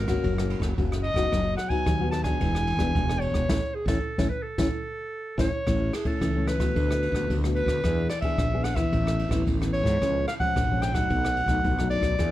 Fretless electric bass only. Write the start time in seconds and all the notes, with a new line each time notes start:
Already playing: G#1
0.24 F#1
0.60 F#1
0.78 F#1
1.14 F#1
1.32 F#1
1.86 D#2
2.41 E1
2.77 E1
2.95 E1
3.31 E1
3.50 A1
3.86 A1
4.19 A1
4.58 A1
5.38 A1
5.67 A1
6.22 C#2
6.76 D2
7.12 D2
7.30 D2
7.66 D2
7.84 E2
8.38 A#1
8.93 A1
9.29 A1
9.47 A1
9.83 G#2
10.02 C#2
10.57 A#1
11.10 B1
11.46 B1
11.65 B1
12.01 B1
12.19 E2